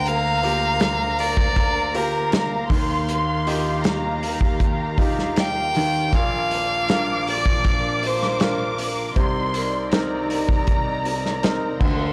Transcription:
0.00 2.66 D2 medium
0.00 2.67 D2 medium
0.00 2.66 D3 medium
0.00 2.67 D3 medium
0.00 6.09 A#3 medium
0.00 2.67 A#4 medium
0.00 9.12 F5 medium
0.00 2.65 A#5 loud
0.06 1.22 F5 loud
0.06 hi-hat pedal medium
0.06 open hi-hat medium
0.43 1.16 A#3 medium
0.43 1.16 F4 soft
0.43 1.16 G4 medium
0.43 hi-hat pedal medium
0.43 open hi-hat medium
0.80 snare loud
0.80 hi-hat pedal medium
0.80 open hi-hat medium
1.19 1.98 D5 loud
1.19 hi-hat pedal medium
1.19 open hi-hat medium
1.37 kick medium
1.56 kick medium
1.56 hi-hat pedal medium
1.56 open hi-hat medium
1.94 2.68 A#3 medium
1.94 2.68 F4 soft
1.94 2.68 G4 medium
1.94 2.71 A#4 medium
1.94 hi-hat pedal medium
1.94 open hi-hat medium
2.32 snare loud
2.32 hi-hat pedal medium
2.32 open hi-hat loud
2.69 6.10 D#2 medium
2.69 5.71 D#2 medium
2.69 5.71 D#3 medium
2.69 6.10 D#3 medium
2.69 6.10 G4 medium
2.69 3.84 C6 loud
2.69 kick loud
2.69 hi-hat pedal medium
2.69 open hi-hat medium
3.09 hi-hat pedal medium
3.09 open hi-hat medium
3.47 4.20 D#4 medium
3.47 4.21 F4 soft
3.47 4.21 G4 medium
3.47 hi-hat pedal medium
3.47 open hi-hat medium
3.84 4.59 A#5 medium
3.84 snare loud
3.84 hi-hat pedal medium
3.84 open hi-hat medium
4.23 hi-hat pedal medium
4.23 open hi-hat medium
4.41 kick medium
4.60 5.71 A#5 medium
4.60 kick medium
4.60 hi-hat pedal medium
4.60 open hi-hat medium
4.98 5.72 D#4 soft
4.98 5.72 F4 soft
4.98 5.73 G4 medium
4.98 kick medium
4.98 hi-hat pedal medium
4.98 open hi-hat medium
5.19 snare soft
5.36 6.17 G5 loud
5.36 snare loud
5.36 hi-hat pedal medium
5.36 open hi-hat loud
5.75 6.11 D#2 medium
5.75 6.13 D#3 medium
5.75 hi-hat pedal medium
5.75 open hi-hat medium
6.11 9.12 A#1 medium
6.11 9.13 A#2 medium
6.11 9.12 A#2 medium
6.11 9.13 F3 medium
6.11 9.13 D4 medium
6.11 11.76 A#4 medium
6.11 7.28 F5 loud
6.11 9.11 D6 loud
6.11 kick loud
6.11 hi-hat pedal medium
6.11 open hi-hat medium
6.51 hi-hat pedal medium
6.51 open hi-hat medium
6.89 7.63 D4 soft
6.89 7.63 F4 soft
6.89 7.63 A#4 medium
6.89 snare loud
6.89 hi-hat pedal medium
6.89 open hi-hat medium
7.27 8.08 D5 loud
7.27 hi-hat pedal medium
7.27 open hi-hat medium
7.46 kick medium
7.64 kick medium
7.64 hi-hat pedal medium
7.64 open hi-hat medium
8.03 8.80 C5 medium
8.03 hi-hat pedal medium
8.03 open hi-hat medium
8.23 snare soft
8.40 9.14 D4 soft
8.40 9.14 F4 soft
8.40 9.15 A#4 medium
8.40 snare loud
8.40 hi-hat pedal medium
8.40 open hi-hat loud
8.78 hi-hat pedal medium
8.78 open hi-hat medium
9.16 11.76 C2 medium
9.16 11.77 C2 medium
9.16 11.76 C3 medium
9.16 11.78 C3 medium
9.16 11.78 D#4 medium
9.16 11.78 D5 medium
9.16 9.92 C6 loud
9.16 kick loud
9.16 hi-hat pedal medium
9.16 open hi-hat medium
9.54 hi-hat pedal medium
9.54 open hi-hat medium
9.92 10.65 C4 medium
9.92 10.66 D#4 soft
9.92 10.66 A#4 medium
9.92 11.76 A#5 loud
9.92 snare loud
9.92 hi-hat pedal medium
9.92 open hi-hat medium
10.30 hi-hat pedal medium
10.30 open hi-hat medium
10.49 kick medium
10.67 kick medium
10.67 hi-hat pedal medium
10.67 open hi-hat medium
11.05 hi-hat pedal medium
11.05 open hi-hat medium
11.26 snare soft
11.43 11.79 C4 soft
11.43 11.79 D#4 soft
11.43 11.79 A#4 medium
11.43 snare loud
11.43 hi-hat pedal medium
11.43 open hi-hat loud
11.80 12.13 D2 medium
11.80 12.13 D3 medium
11.80 12.13 A#3 medium
11.80 12.13 A#4 medium
11.80 12.13 F5 loud
11.80 12.13 C6 loud
11.80 kick loud
11.80 crash medium

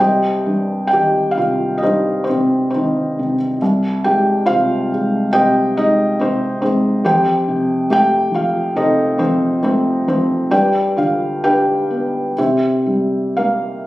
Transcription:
0.00 3.57 C2 medium
0.00 0.88 G4 medium
0.00 0.88 C5 medium
0.00 0.88 D#5 medium
0.00 0.86 G5 medium
0.46 1.82 G2 soft
0.87 1.37 G5 medium
0.93 2.70 D#3 soft
0.93 1.35 G4 medium
1.31 1.81 F5 medium
1.37 2.29 C3 soft
1.37 1.80 F4 medium
1.78 2.22 D#5 medium
1.82 3.57 G2 soft
1.82 2.25 D#4 soft
1.82 2.24 G4 soft
1.82 2.23 C5 medium
2.24 2.69 C5 medium
2.29 3.18 C3 soft
2.29 2.70 C4 soft
2.71 3.59 D#3 soft
2.71 3.34 C5 medium
2.75 3.37 C4 soft
2.75 3.36 D#4 soft
3.19 3.61 C3 soft
3.62 7.01 C2 medium
4.04 4.91 G#2 soft
4.04 4.45 G4 medium
4.04 4.48 G5 medium
4.46 5.35 C3 medium
4.46 5.28 F4 medium
4.46 5.28 C5 medium
4.46 5.35 F5 medium
4.92 5.75 G#2 soft
5.33 6.19 C3 medium
5.33 5.73 G4 medium
5.33 5.73 C5 medium
5.33 5.73 D#5 medium
5.33 5.77 G5 medium
5.77 6.61 G#2 soft
5.77 6.16 D#4 medium
5.77 6.16 D#5 medium
6.20 7.03 C3 soft
6.20 6.59 C4 medium
6.20 6.60 C5 medium
6.62 7.04 G#2 soft
6.62 7.02 C4 medium
6.62 7.04 C5 medium
7.04 10.49 F2 medium
7.04 7.86 G4 medium
7.04 7.87 C5 medium
7.04 7.91 G5 medium
7.48 8.74 C3 soft
7.90 9.59 A3 medium
7.90 8.30 G4 medium
7.90 8.31 G5 loud
8.31 9.18 F3 soft
8.31 8.74 F4 medium
8.35 8.78 F5 medium
8.76 10.49 C3 medium
8.76 9.16 D#4 medium
8.76 9.16 A4 medium
8.76 9.16 C5 medium
8.76 9.21 D#5 medium
9.18 10.06 F3 soft
9.18 9.59 C4 medium
9.18 9.60 C5 medium
9.63 10.50 A3 soft
9.63 10.04 C4 medium
9.63 10.05 C5 medium
10.07 10.51 F3 soft
10.07 10.50 C4 medium
10.07 10.50 C5 medium
10.51 12.33 G2 medium
10.51 10.94 G4 medium
10.51 10.94 B4 medium
10.51 10.94 D5 medium
10.51 10.99 G5 medium
10.97 12.33 D3 soft
10.97 11.40 F4 soft
10.97 11.45 F5 medium
11.44 12.36 D4 soft
11.44 12.34 G4 medium
11.44 12.34 B4 medium
11.44 12.41 G5 medium
11.91 12.37 B3 soft
12.38 13.87 C3 medium
12.38 13.83 C4 soft
12.38 13.83 G4 soft
12.38 13.83 C5 medium
12.38 13.83 E5 soft
12.86 13.86 G3 soft
13.37 13.87 A#3 soft
13.37 13.87 A#4 soft
13.37 13.87 F5 medium

